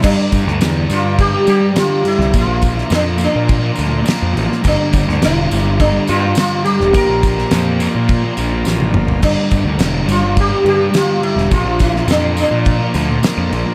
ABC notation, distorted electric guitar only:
X:1
M:4/4
L:1/16
Q:1/4=105
K:Gdor
V:1 name="Distorted electric guitar" clef=bass
[G,,D,G,]4 [G,,D,G,]2 [G,,D,G,] [D,G,]2 [D,G,] [G,,D,G,]2 [G,,D,G,]2 [G,,D,G,] [D,G,] | [B,,F,B,]4 [B,,F,B,]2 [B,,F,B,] [F,B,]2 [F,B,] [B,,F,B,]2 [B,,F,B,]2 [B,,F,B,] [F,B,] | [G,,D,G,]4 [G,,D,G,]2 [G,,D,G,] [D,G,]2 [D,G,] [G,,D,G,]2 [G,,D,G,]2 [G,,D,G,] [D,G,] | [B,,F,B,]4 [B,,F,B,]2 [B,,F,B,] [F,B,]2 [F,B,] [B,,F,B,]2 [B,,F,B,]2 [B,,F,B,] [F,B,] |
[G,,D,G,]4 [G,,D,G,]2 [G,,D,G,] [D,G,]2 [D,G,] [G,,D,G,]2 [G,,D,G,]2 [G,,D,G,] [D,G,] | [B,,F,B,]4 [B,,F,B,]2 [B,,F,B,] [F,B,]2 [F,B,] [B,,F,B,]2 [B,,F,B,]2 [B,,F,B,] [F,B,] |]